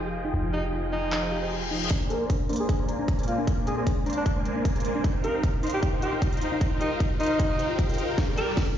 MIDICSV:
0, 0, Header, 1, 9, 480
1, 0, Start_track
1, 0, Tempo, 392157
1, 412, Time_signature, 4, 2, 24, 8
1, 10744, End_track
2, 0, Start_track
2, 0, Title_t, "Supersaw synth"
2, 0, Program_c, 0, 81
2, 0, Note_on_c, 0, 53, 77
2, 0, Note_on_c, 0, 65, 70
2, 0, Note_on_c, 0, 68, 67
2, 0, Note_on_c, 0, 75, 72
2, 0, Note_on_c, 0, 79, 83
2, 2306, Note_off_c, 0, 53, 0
2, 2306, Note_off_c, 0, 65, 0
2, 2306, Note_off_c, 0, 68, 0
2, 2306, Note_off_c, 0, 75, 0
2, 2306, Note_off_c, 0, 79, 0
2, 2333, Note_on_c, 0, 58, 83
2, 2333, Note_on_c, 0, 70, 70
2, 2333, Note_on_c, 0, 72, 77
2, 2334, Note_on_c, 0, 74, 75
2, 2334, Note_on_c, 0, 80, 93
2, 2672, Note_off_c, 0, 58, 0
2, 2672, Note_off_c, 0, 70, 0
2, 2672, Note_off_c, 0, 72, 0
2, 2672, Note_off_c, 0, 74, 0
2, 2672, Note_off_c, 0, 80, 0
2, 2704, Note_on_c, 0, 58, 80
2, 2704, Note_on_c, 0, 70, 74
2, 2704, Note_on_c, 0, 72, 73
2, 2704, Note_on_c, 0, 74, 73
2, 2704, Note_on_c, 0, 80, 87
2, 2808, Note_off_c, 0, 58, 0
2, 2808, Note_off_c, 0, 70, 0
2, 2808, Note_off_c, 0, 72, 0
2, 2808, Note_off_c, 0, 74, 0
2, 2808, Note_off_c, 0, 80, 0
2, 3053, Note_on_c, 0, 58, 82
2, 3053, Note_on_c, 0, 70, 78
2, 3053, Note_on_c, 0, 72, 78
2, 3053, Note_on_c, 0, 74, 75
2, 3053, Note_on_c, 0, 84, 94
2, 3392, Note_off_c, 0, 58, 0
2, 3392, Note_off_c, 0, 70, 0
2, 3392, Note_off_c, 0, 72, 0
2, 3392, Note_off_c, 0, 74, 0
2, 3392, Note_off_c, 0, 84, 0
2, 3423, Note_on_c, 0, 58, 93
2, 3423, Note_on_c, 0, 70, 87
2, 3423, Note_on_c, 0, 72, 86
2, 3423, Note_on_c, 0, 74, 84
2, 3423, Note_on_c, 0, 80, 107
2, 3872, Note_off_c, 0, 58, 0
2, 3872, Note_off_c, 0, 70, 0
2, 3872, Note_off_c, 0, 72, 0
2, 3872, Note_off_c, 0, 74, 0
2, 3872, Note_off_c, 0, 80, 0
2, 3903, Note_on_c, 0, 58, 98
2, 3903, Note_on_c, 0, 70, 91
2, 3903, Note_on_c, 0, 72, 89
2, 3903, Note_on_c, 0, 74, 89
2, 3903, Note_on_c, 0, 80, 105
2, 4226, Note_off_c, 0, 58, 0
2, 4226, Note_off_c, 0, 70, 0
2, 4226, Note_off_c, 0, 72, 0
2, 4226, Note_off_c, 0, 74, 0
2, 4226, Note_off_c, 0, 80, 0
2, 4252, Note_on_c, 0, 58, 85
2, 4252, Note_on_c, 0, 70, 74
2, 4252, Note_on_c, 0, 80, 94
2, 4253, Note_on_c, 0, 72, 73
2, 4253, Note_on_c, 0, 74, 76
2, 4591, Note_off_c, 0, 70, 0
2, 4592, Note_off_c, 0, 58, 0
2, 4592, Note_off_c, 0, 72, 0
2, 4592, Note_off_c, 0, 74, 0
2, 4592, Note_off_c, 0, 80, 0
2, 4623, Note_on_c, 0, 58, 78
2, 4624, Note_on_c, 0, 70, 76
2, 4624, Note_on_c, 0, 72, 75
2, 4624, Note_on_c, 0, 74, 75
2, 4624, Note_on_c, 0, 80, 88
2, 4728, Note_off_c, 0, 58, 0
2, 4728, Note_off_c, 0, 70, 0
2, 4728, Note_off_c, 0, 72, 0
2, 4728, Note_off_c, 0, 74, 0
2, 4728, Note_off_c, 0, 80, 0
2, 4973, Note_on_c, 0, 58, 81
2, 4973, Note_on_c, 0, 70, 75
2, 4973, Note_on_c, 0, 72, 79
2, 4973, Note_on_c, 0, 74, 76
2, 4973, Note_on_c, 0, 84, 93
2, 5312, Note_off_c, 0, 58, 0
2, 5312, Note_off_c, 0, 70, 0
2, 5312, Note_off_c, 0, 72, 0
2, 5312, Note_off_c, 0, 74, 0
2, 5312, Note_off_c, 0, 84, 0
2, 5343, Note_on_c, 0, 58, 94
2, 5343, Note_on_c, 0, 70, 89
2, 5343, Note_on_c, 0, 72, 89
2, 5344, Note_on_c, 0, 74, 84
2, 5344, Note_on_c, 0, 80, 105
2, 5792, Note_off_c, 0, 58, 0
2, 5792, Note_off_c, 0, 70, 0
2, 5792, Note_off_c, 0, 72, 0
2, 5792, Note_off_c, 0, 74, 0
2, 5792, Note_off_c, 0, 80, 0
2, 5823, Note_on_c, 0, 58, 98
2, 5823, Note_on_c, 0, 74, 88
2, 5823, Note_on_c, 0, 80, 109
2, 5824, Note_on_c, 0, 70, 91
2, 5824, Note_on_c, 0, 72, 90
2, 6146, Note_off_c, 0, 58, 0
2, 6146, Note_off_c, 0, 70, 0
2, 6146, Note_off_c, 0, 74, 0
2, 6146, Note_off_c, 0, 80, 0
2, 6147, Note_off_c, 0, 72, 0
2, 6173, Note_on_c, 0, 63, 80
2, 6173, Note_on_c, 0, 70, 75
2, 6173, Note_on_c, 0, 72, 74
2, 6173, Note_on_c, 0, 77, 76
2, 6173, Note_on_c, 0, 79, 91
2, 6512, Note_off_c, 0, 63, 0
2, 6512, Note_off_c, 0, 70, 0
2, 6512, Note_off_c, 0, 72, 0
2, 6512, Note_off_c, 0, 77, 0
2, 6512, Note_off_c, 0, 79, 0
2, 6543, Note_on_c, 0, 70, 72
2, 6543, Note_on_c, 0, 72, 73
2, 6543, Note_on_c, 0, 77, 77
2, 6543, Note_on_c, 0, 79, 91
2, 6544, Note_on_c, 0, 63, 80
2, 6648, Note_off_c, 0, 63, 0
2, 6648, Note_off_c, 0, 70, 0
2, 6648, Note_off_c, 0, 72, 0
2, 6648, Note_off_c, 0, 77, 0
2, 6648, Note_off_c, 0, 79, 0
2, 6892, Note_on_c, 0, 63, 86
2, 6892, Note_on_c, 0, 72, 76
2, 6892, Note_on_c, 0, 77, 75
2, 6893, Note_on_c, 0, 70, 78
2, 6893, Note_on_c, 0, 84, 96
2, 7232, Note_off_c, 0, 63, 0
2, 7232, Note_off_c, 0, 70, 0
2, 7232, Note_off_c, 0, 72, 0
2, 7232, Note_off_c, 0, 77, 0
2, 7232, Note_off_c, 0, 84, 0
2, 7263, Note_on_c, 0, 63, 93
2, 7263, Note_on_c, 0, 70, 90
2, 7263, Note_on_c, 0, 72, 91
2, 7263, Note_on_c, 0, 77, 84
2, 7263, Note_on_c, 0, 79, 105
2, 7712, Note_off_c, 0, 63, 0
2, 7712, Note_off_c, 0, 70, 0
2, 7712, Note_off_c, 0, 72, 0
2, 7712, Note_off_c, 0, 77, 0
2, 7712, Note_off_c, 0, 79, 0
2, 7742, Note_on_c, 0, 63, 94
2, 7742, Note_on_c, 0, 70, 86
2, 7742, Note_on_c, 0, 79, 108
2, 7743, Note_on_c, 0, 72, 92
2, 7743, Note_on_c, 0, 77, 93
2, 8066, Note_off_c, 0, 63, 0
2, 8066, Note_off_c, 0, 70, 0
2, 8066, Note_off_c, 0, 72, 0
2, 8066, Note_off_c, 0, 77, 0
2, 8066, Note_off_c, 0, 79, 0
2, 8092, Note_on_c, 0, 63, 80
2, 8092, Note_on_c, 0, 70, 75
2, 8092, Note_on_c, 0, 72, 78
2, 8092, Note_on_c, 0, 77, 74
2, 8092, Note_on_c, 0, 79, 88
2, 8431, Note_off_c, 0, 70, 0
2, 8431, Note_off_c, 0, 72, 0
2, 8431, Note_off_c, 0, 77, 0
2, 8431, Note_off_c, 0, 79, 0
2, 8432, Note_off_c, 0, 63, 0
2, 8462, Note_on_c, 0, 63, 79
2, 8462, Note_on_c, 0, 70, 73
2, 8462, Note_on_c, 0, 72, 74
2, 8462, Note_on_c, 0, 77, 74
2, 8462, Note_on_c, 0, 79, 91
2, 8567, Note_off_c, 0, 63, 0
2, 8567, Note_off_c, 0, 70, 0
2, 8567, Note_off_c, 0, 77, 0
2, 8567, Note_off_c, 0, 79, 0
2, 8568, Note_off_c, 0, 72, 0
2, 8811, Note_on_c, 0, 63, 84
2, 8811, Note_on_c, 0, 70, 79
2, 8811, Note_on_c, 0, 72, 80
2, 8811, Note_on_c, 0, 77, 82
2, 8811, Note_on_c, 0, 84, 92
2, 9151, Note_off_c, 0, 63, 0
2, 9151, Note_off_c, 0, 70, 0
2, 9151, Note_off_c, 0, 72, 0
2, 9151, Note_off_c, 0, 77, 0
2, 9151, Note_off_c, 0, 84, 0
2, 9181, Note_on_c, 0, 72, 86
2, 9181, Note_on_c, 0, 77, 86
2, 9181, Note_on_c, 0, 79, 102
2, 9182, Note_on_c, 0, 63, 92
2, 9182, Note_on_c, 0, 70, 90
2, 9631, Note_off_c, 0, 63, 0
2, 9631, Note_off_c, 0, 70, 0
2, 9631, Note_off_c, 0, 72, 0
2, 9631, Note_off_c, 0, 77, 0
2, 9631, Note_off_c, 0, 79, 0
2, 9662, Note_on_c, 0, 63, 97
2, 9662, Note_on_c, 0, 70, 92
2, 9662, Note_on_c, 0, 72, 91
2, 9662, Note_on_c, 0, 77, 91
2, 9662, Note_on_c, 0, 79, 108
2, 9986, Note_off_c, 0, 63, 0
2, 9986, Note_off_c, 0, 70, 0
2, 9986, Note_off_c, 0, 72, 0
2, 9986, Note_off_c, 0, 77, 0
2, 9986, Note_off_c, 0, 79, 0
2, 10011, Note_on_c, 0, 55, 83
2, 10011, Note_on_c, 0, 65, 73
2, 10011, Note_on_c, 0, 70, 79
2, 10011, Note_on_c, 0, 74, 77
2, 10012, Note_on_c, 0, 79, 89
2, 10351, Note_off_c, 0, 55, 0
2, 10351, Note_off_c, 0, 65, 0
2, 10351, Note_off_c, 0, 70, 0
2, 10351, Note_off_c, 0, 74, 0
2, 10351, Note_off_c, 0, 79, 0
2, 10382, Note_on_c, 0, 55, 84
2, 10382, Note_on_c, 0, 65, 76
2, 10382, Note_on_c, 0, 70, 78
2, 10382, Note_on_c, 0, 74, 72
2, 10382, Note_on_c, 0, 79, 94
2, 10487, Note_off_c, 0, 70, 0
2, 10487, Note_off_c, 0, 79, 0
2, 10488, Note_off_c, 0, 55, 0
2, 10488, Note_off_c, 0, 65, 0
2, 10488, Note_off_c, 0, 74, 0
2, 10744, End_track
3, 0, Start_track
3, 0, Title_t, "Alto saxophone"
3, 0, Program_c, 1, 65
3, 652, Note_on_c, 1, 63, 88
3, 771, Note_off_c, 1, 63, 0
3, 1132, Note_on_c, 1, 63, 90
3, 1808, Note_off_c, 1, 63, 0
3, 2570, Note_on_c, 1, 70, 85
3, 2691, Note_off_c, 1, 70, 0
3, 3182, Note_on_c, 1, 68, 88
3, 3253, Note_off_c, 1, 68, 0
3, 3292, Note_on_c, 1, 68, 70
3, 3376, Note_off_c, 1, 68, 0
3, 4013, Note_on_c, 1, 65, 86
3, 4132, Note_off_c, 1, 65, 0
3, 4492, Note_on_c, 1, 68, 90
3, 4576, Note_off_c, 1, 68, 0
3, 4621, Note_on_c, 1, 68, 69
3, 4692, Note_off_c, 1, 68, 0
3, 5103, Note_on_c, 1, 62, 88
3, 5173, Note_off_c, 1, 62, 0
3, 5213, Note_on_c, 1, 62, 72
3, 5296, Note_off_c, 1, 62, 0
3, 6413, Note_on_c, 1, 70, 92
3, 6532, Note_off_c, 1, 70, 0
3, 7022, Note_on_c, 1, 67, 89
3, 7093, Note_off_c, 1, 67, 0
3, 7133, Note_on_c, 1, 67, 76
3, 7216, Note_off_c, 1, 67, 0
3, 7373, Note_on_c, 1, 67, 85
3, 7492, Note_off_c, 1, 67, 0
3, 8332, Note_on_c, 1, 63, 92
3, 8451, Note_off_c, 1, 63, 0
3, 8813, Note_on_c, 1, 63, 95
3, 9489, Note_off_c, 1, 63, 0
3, 10251, Note_on_c, 1, 70, 91
3, 10371, Note_off_c, 1, 70, 0
3, 10744, End_track
4, 0, Start_track
4, 0, Title_t, "Synth arpeggio sound"
4, 0, Program_c, 2, 84
4, 63, Note_on_c, 2, 67, 71
4, 96, Note_off_c, 2, 67, 0
4, 303, Note_on_c, 2, 63, 104
4, 358, Note_off_c, 2, 63, 0
4, 413, Note_on_c, 2, 63, 81
4, 512, Note_off_c, 2, 63, 0
4, 652, Note_on_c, 2, 67, 78
4, 692, Note_off_c, 2, 67, 0
4, 892, Note_on_c, 2, 63, 85
4, 958, Note_off_c, 2, 63, 0
4, 1133, Note_on_c, 2, 63, 96
4, 1172, Note_off_c, 2, 63, 0
4, 1372, Note_on_c, 2, 63, 81
4, 1471, Note_off_c, 2, 63, 0
4, 1503, Note_on_c, 2, 72, 104
4, 1559, Note_off_c, 2, 72, 0
4, 1613, Note_on_c, 2, 67, 75
4, 1679, Note_off_c, 2, 67, 0
4, 1743, Note_on_c, 2, 72, 79
4, 1799, Note_off_c, 2, 72, 0
4, 1852, Note_on_c, 2, 67, 78
4, 1892, Note_off_c, 2, 67, 0
4, 2092, Note_on_c, 2, 63, 72
4, 2158, Note_off_c, 2, 63, 0
4, 2332, Note_on_c, 2, 62, 80
4, 2431, Note_off_c, 2, 62, 0
4, 2572, Note_on_c, 2, 68, 78
4, 2612, Note_off_c, 2, 68, 0
4, 2813, Note_on_c, 2, 62, 84
4, 2879, Note_off_c, 2, 62, 0
4, 3053, Note_on_c, 2, 62, 97
4, 3092, Note_off_c, 2, 62, 0
4, 3293, Note_on_c, 2, 62, 83
4, 3392, Note_off_c, 2, 62, 0
4, 3423, Note_on_c, 2, 72, 106
4, 3478, Note_off_c, 2, 72, 0
4, 3663, Note_on_c, 2, 62, 75
4, 3746, Note_off_c, 2, 62, 0
4, 3902, Note_on_c, 2, 68, 74
4, 3936, Note_off_c, 2, 68, 0
4, 4143, Note_on_c, 2, 62, 104
4, 4198, Note_off_c, 2, 62, 0
4, 4493, Note_on_c, 2, 68, 78
4, 4532, Note_off_c, 2, 68, 0
4, 4733, Note_on_c, 2, 62, 84
4, 4799, Note_off_c, 2, 62, 0
4, 4972, Note_on_c, 2, 62, 96
4, 5012, Note_off_c, 2, 62, 0
4, 5212, Note_on_c, 2, 62, 83
4, 5311, Note_off_c, 2, 62, 0
4, 5343, Note_on_c, 2, 72, 106
4, 5398, Note_off_c, 2, 72, 0
4, 5582, Note_on_c, 2, 62, 78
4, 5666, Note_off_c, 2, 62, 0
4, 5822, Note_on_c, 2, 68, 74
4, 5856, Note_off_c, 2, 68, 0
4, 6062, Note_on_c, 2, 62, 101
4, 6118, Note_off_c, 2, 62, 0
4, 6411, Note_on_c, 2, 67, 79
4, 6451, Note_off_c, 2, 67, 0
4, 6652, Note_on_c, 2, 63, 86
4, 6718, Note_off_c, 2, 63, 0
4, 6891, Note_on_c, 2, 63, 101
4, 6932, Note_off_c, 2, 63, 0
4, 7132, Note_on_c, 2, 63, 82
4, 7231, Note_off_c, 2, 63, 0
4, 7262, Note_on_c, 2, 72, 109
4, 7318, Note_off_c, 2, 72, 0
4, 7502, Note_on_c, 2, 63, 78
4, 7586, Note_off_c, 2, 63, 0
4, 7742, Note_on_c, 2, 67, 76
4, 7776, Note_off_c, 2, 67, 0
4, 7982, Note_on_c, 2, 63, 101
4, 8038, Note_off_c, 2, 63, 0
4, 8091, Note_on_c, 2, 63, 84
4, 8191, Note_off_c, 2, 63, 0
4, 8332, Note_on_c, 2, 67, 81
4, 8372, Note_off_c, 2, 67, 0
4, 8571, Note_on_c, 2, 63, 85
4, 8638, Note_off_c, 2, 63, 0
4, 8811, Note_on_c, 2, 63, 97
4, 8851, Note_off_c, 2, 63, 0
4, 9182, Note_on_c, 2, 72, 109
4, 9238, Note_off_c, 2, 72, 0
4, 9291, Note_on_c, 2, 72, 75
4, 9358, Note_off_c, 2, 72, 0
4, 9422, Note_on_c, 2, 65, 78
4, 9478, Note_off_c, 2, 65, 0
4, 9531, Note_on_c, 2, 65, 75
4, 9631, Note_off_c, 2, 65, 0
4, 9662, Note_on_c, 2, 70, 76
4, 9718, Note_off_c, 2, 70, 0
4, 9771, Note_on_c, 2, 70, 74
4, 9838, Note_off_c, 2, 70, 0
4, 10011, Note_on_c, 2, 62, 82
4, 10111, Note_off_c, 2, 62, 0
4, 10251, Note_on_c, 2, 67, 78
4, 10292, Note_off_c, 2, 67, 0
4, 10491, Note_on_c, 2, 62, 82
4, 10558, Note_off_c, 2, 62, 0
4, 10744, End_track
5, 0, Start_track
5, 0, Title_t, "Ambient pad"
5, 0, Program_c, 3, 92
5, 0, Note_on_c, 3, 53, 81
5, 0, Note_on_c, 3, 63, 72
5, 0, Note_on_c, 3, 68, 88
5, 0, Note_on_c, 3, 79, 71
5, 2294, Note_off_c, 3, 53, 0
5, 2294, Note_off_c, 3, 63, 0
5, 2294, Note_off_c, 3, 68, 0
5, 2294, Note_off_c, 3, 79, 0
5, 2332, Note_on_c, 3, 46, 76
5, 2332, Note_on_c, 3, 56, 73
5, 2332, Note_on_c, 3, 62, 90
5, 2333, Note_on_c, 3, 60, 70
5, 6134, Note_off_c, 3, 46, 0
5, 6134, Note_off_c, 3, 56, 0
5, 6134, Note_off_c, 3, 60, 0
5, 6134, Note_off_c, 3, 62, 0
5, 6172, Note_on_c, 3, 48, 73
5, 6173, Note_on_c, 3, 39, 82
5, 6173, Note_on_c, 3, 55, 71
5, 6173, Note_on_c, 3, 65, 92
5, 9974, Note_off_c, 3, 39, 0
5, 9974, Note_off_c, 3, 48, 0
5, 9974, Note_off_c, 3, 55, 0
5, 9974, Note_off_c, 3, 65, 0
5, 10012, Note_on_c, 3, 53, 74
5, 10012, Note_on_c, 3, 70, 90
5, 10013, Note_on_c, 3, 43, 81
5, 10744, Note_off_c, 3, 43, 0
5, 10744, Note_off_c, 3, 53, 0
5, 10744, Note_off_c, 3, 70, 0
5, 10744, End_track
6, 0, Start_track
6, 0, Title_t, "808-style bass"
6, 0, Program_c, 4, 38
6, 0, Note_on_c, 4, 29, 85
6, 390, Note_off_c, 4, 29, 0
6, 412, Note_on_c, 4, 29, 86
6, 2311, Note_off_c, 4, 29, 0
6, 10744, End_track
7, 0, Start_track
7, 0, Title_t, "Reverse cymbal"
7, 0, Program_c, 5, 119
7, 1373, Note_on_c, 5, 60, 73
7, 2333, Note_off_c, 5, 60, 0
7, 10744, End_track
8, 0, Start_track
8, 0, Title_t, "Riser"
8, 0, Program_c, 6, 103
8, 2333, Note_on_c, 6, 60, 77
8, 10744, Note_off_c, 6, 60, 0
8, 10744, End_track
9, 0, Start_track
9, 0, Title_t, "Drums"
9, 1372, Note_on_c, 9, 26, 92
9, 1372, Note_on_c, 9, 39, 102
9, 1495, Note_off_c, 9, 26, 0
9, 1495, Note_off_c, 9, 39, 0
9, 2332, Note_on_c, 9, 36, 95
9, 2333, Note_on_c, 9, 42, 76
9, 2455, Note_off_c, 9, 36, 0
9, 2455, Note_off_c, 9, 42, 0
9, 2573, Note_on_c, 9, 42, 68
9, 2695, Note_off_c, 9, 42, 0
9, 2812, Note_on_c, 9, 36, 95
9, 2813, Note_on_c, 9, 42, 79
9, 2935, Note_off_c, 9, 36, 0
9, 2935, Note_off_c, 9, 42, 0
9, 3053, Note_on_c, 9, 42, 50
9, 3096, Note_off_c, 9, 42, 0
9, 3096, Note_on_c, 9, 42, 66
9, 3132, Note_off_c, 9, 42, 0
9, 3132, Note_on_c, 9, 42, 82
9, 3255, Note_off_c, 9, 42, 0
9, 3292, Note_on_c, 9, 36, 97
9, 3292, Note_on_c, 9, 42, 79
9, 3415, Note_off_c, 9, 36, 0
9, 3415, Note_off_c, 9, 42, 0
9, 3532, Note_on_c, 9, 42, 64
9, 3654, Note_off_c, 9, 42, 0
9, 3772, Note_on_c, 9, 36, 93
9, 3772, Note_on_c, 9, 42, 87
9, 3895, Note_off_c, 9, 36, 0
9, 3895, Note_off_c, 9, 42, 0
9, 3902, Note_on_c, 9, 42, 47
9, 3958, Note_off_c, 9, 42, 0
9, 3958, Note_on_c, 9, 42, 64
9, 4012, Note_off_c, 9, 42, 0
9, 4012, Note_on_c, 9, 42, 66
9, 4135, Note_off_c, 9, 42, 0
9, 4252, Note_on_c, 9, 36, 93
9, 4252, Note_on_c, 9, 42, 74
9, 4375, Note_off_c, 9, 36, 0
9, 4375, Note_off_c, 9, 42, 0
9, 4492, Note_on_c, 9, 42, 67
9, 4615, Note_off_c, 9, 42, 0
9, 4732, Note_on_c, 9, 36, 93
9, 4732, Note_on_c, 9, 42, 80
9, 4855, Note_off_c, 9, 36, 0
9, 4855, Note_off_c, 9, 42, 0
9, 4973, Note_on_c, 9, 42, 49
9, 5016, Note_off_c, 9, 42, 0
9, 5016, Note_on_c, 9, 42, 63
9, 5052, Note_off_c, 9, 42, 0
9, 5052, Note_on_c, 9, 42, 76
9, 5175, Note_off_c, 9, 42, 0
9, 5212, Note_on_c, 9, 36, 98
9, 5212, Note_on_c, 9, 42, 75
9, 5335, Note_off_c, 9, 36, 0
9, 5335, Note_off_c, 9, 42, 0
9, 5452, Note_on_c, 9, 42, 64
9, 5575, Note_off_c, 9, 42, 0
9, 5692, Note_on_c, 9, 36, 94
9, 5693, Note_on_c, 9, 42, 84
9, 5815, Note_off_c, 9, 36, 0
9, 5815, Note_off_c, 9, 42, 0
9, 5823, Note_on_c, 9, 42, 47
9, 5878, Note_off_c, 9, 42, 0
9, 5878, Note_on_c, 9, 42, 64
9, 5933, Note_off_c, 9, 42, 0
9, 5933, Note_on_c, 9, 42, 67
9, 6055, Note_off_c, 9, 42, 0
9, 6172, Note_on_c, 9, 36, 94
9, 6172, Note_on_c, 9, 42, 74
9, 6294, Note_off_c, 9, 36, 0
9, 6295, Note_off_c, 9, 42, 0
9, 6412, Note_on_c, 9, 42, 61
9, 6535, Note_off_c, 9, 42, 0
9, 6652, Note_on_c, 9, 36, 97
9, 6652, Note_on_c, 9, 42, 75
9, 6774, Note_off_c, 9, 36, 0
9, 6774, Note_off_c, 9, 42, 0
9, 6892, Note_on_c, 9, 42, 47
9, 6935, Note_off_c, 9, 42, 0
9, 6935, Note_on_c, 9, 42, 62
9, 6971, Note_off_c, 9, 42, 0
9, 6971, Note_on_c, 9, 42, 79
9, 7094, Note_off_c, 9, 42, 0
9, 7132, Note_on_c, 9, 36, 95
9, 7132, Note_on_c, 9, 42, 74
9, 7254, Note_off_c, 9, 36, 0
9, 7254, Note_off_c, 9, 42, 0
9, 7371, Note_on_c, 9, 42, 61
9, 7494, Note_off_c, 9, 42, 0
9, 7611, Note_on_c, 9, 42, 78
9, 7612, Note_on_c, 9, 36, 95
9, 7733, Note_off_c, 9, 42, 0
9, 7734, Note_off_c, 9, 36, 0
9, 7742, Note_on_c, 9, 42, 48
9, 7797, Note_off_c, 9, 42, 0
9, 7797, Note_on_c, 9, 42, 59
9, 7851, Note_off_c, 9, 42, 0
9, 7851, Note_on_c, 9, 42, 66
9, 7973, Note_off_c, 9, 42, 0
9, 8091, Note_on_c, 9, 42, 72
9, 8092, Note_on_c, 9, 36, 99
9, 8214, Note_off_c, 9, 36, 0
9, 8214, Note_off_c, 9, 42, 0
9, 8332, Note_on_c, 9, 42, 62
9, 8454, Note_off_c, 9, 42, 0
9, 8571, Note_on_c, 9, 36, 100
9, 8572, Note_on_c, 9, 42, 72
9, 8694, Note_off_c, 9, 36, 0
9, 8694, Note_off_c, 9, 42, 0
9, 8811, Note_on_c, 9, 42, 48
9, 8854, Note_off_c, 9, 42, 0
9, 8854, Note_on_c, 9, 42, 60
9, 8891, Note_off_c, 9, 42, 0
9, 8891, Note_on_c, 9, 42, 76
9, 9014, Note_off_c, 9, 42, 0
9, 9051, Note_on_c, 9, 36, 100
9, 9052, Note_on_c, 9, 42, 72
9, 9174, Note_off_c, 9, 36, 0
9, 9174, Note_off_c, 9, 42, 0
9, 9291, Note_on_c, 9, 42, 61
9, 9414, Note_off_c, 9, 42, 0
9, 9531, Note_on_c, 9, 36, 97
9, 9531, Note_on_c, 9, 42, 78
9, 9654, Note_off_c, 9, 36, 0
9, 9654, Note_off_c, 9, 42, 0
9, 9662, Note_on_c, 9, 42, 46
9, 9716, Note_off_c, 9, 42, 0
9, 9716, Note_on_c, 9, 42, 63
9, 9771, Note_off_c, 9, 42, 0
9, 9771, Note_on_c, 9, 42, 63
9, 9893, Note_off_c, 9, 42, 0
9, 10011, Note_on_c, 9, 36, 96
9, 10011, Note_on_c, 9, 38, 48
9, 10011, Note_on_c, 9, 42, 71
9, 10133, Note_off_c, 9, 38, 0
9, 10133, Note_off_c, 9, 42, 0
9, 10134, Note_off_c, 9, 36, 0
9, 10251, Note_on_c, 9, 42, 63
9, 10374, Note_off_c, 9, 42, 0
9, 10491, Note_on_c, 9, 36, 100
9, 10491, Note_on_c, 9, 38, 49
9, 10491, Note_on_c, 9, 42, 74
9, 10613, Note_off_c, 9, 38, 0
9, 10613, Note_off_c, 9, 42, 0
9, 10614, Note_off_c, 9, 36, 0
9, 10744, End_track
0, 0, End_of_file